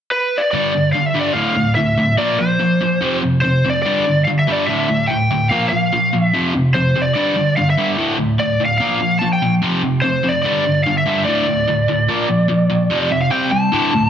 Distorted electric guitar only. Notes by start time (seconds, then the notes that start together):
0.53 G2 D3 G3
0.74 G2 D3
0.94 G2 D3
1.14 G2 D3 G3
1.34 D2 A2 D3
1.56 D2 A2
1.76 D2 A2
1.98 D2 A2
2.18 A#2 F3 A#3
2.39 A#2 F3
2.60 A#2 F3
2.81 A#2 F3
3.01 F2 C3 F3
3.23 F2 C3
3.44 F2 C3
3.65 F2 C3
3.86 G2 D3 G3
4.07 G2 D3
4.27 G2 D3
4.47 G2 D3 G3
4.68 D2 A2 D3
4.89 D2 A2
5.10 D2 A2
5.31 D2 A2
5.51 A#2 F3 A#3
5.72 A#2 F3
5.92 A#2 F3
6.13 A#2 F3
6.34 F2 C3 F3
6.54 F2 C3
6.75 F2 C3
6.96 F2 C3
7.16 G2 D3 G3
7.36 G2 D3
7.57 G2 D3
7.77 G2 D3 G3
7.97 D2 A2 D3
8.18 D2 A2
8.39 D2 A2
8.60 D2 A2
8.80 A#2 F3 A#3
9.00 A#2 F3
9.21 A#2 F3
9.42 A#2 F3
9.62 F2 C3 F3
9.83 F2 C3
10.03 F2 C3
10.24 F2 C3
10.44 G2 D3 G3
10.65 G2 D3
10.86 G2 D3
11.06 G2 D3 G3
11.27 D2 A2 D3
11.47 D2 A2
11.68 D2 A2
11.88 D2 A2
12.08 A#2 F3 A#3
12.29 A#2 F3
12.48 A#2 F3
12.70 A#2 F3
12.90 F2 C3 F3
13.11 F2 C3
13.31 C3 G3 C4
13.51 C3 G3
13.72 D2 A2 D3
13.94 D2 A2